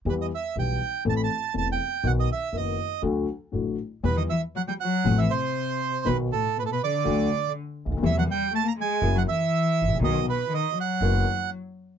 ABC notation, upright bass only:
X:1
M:4/4
L:1/16
Q:1/4=120
K:Bphr
V:1 name="Upright bass" clef=bass
E,,3/2 z2 z/2 B,,,3/2 z2 z/2 A,,,3/2 z2 z/2 E,,,3/2 z2 z/2 | B,,,3/2 z2 z/2 F,,,3/2 z2 z/2 D,,3/2 z2 z/2 A,,,3/2 z2 z/2 | E,,3/2 z6 z/2 A,,,3/2 z6 z/2 | B,,,3/2 z6 z/2 D,,3/2 z4 z ^C,,/2 D,,/2 ^D,,/2 |
E,,3/2 z6 z/2 F,,,3/2 z4 z ^G,,,/2 A,,,/2 ^A,,,/2 | B,,,3/2 z6 z/2 F,,,3/2 z6 z/2 |]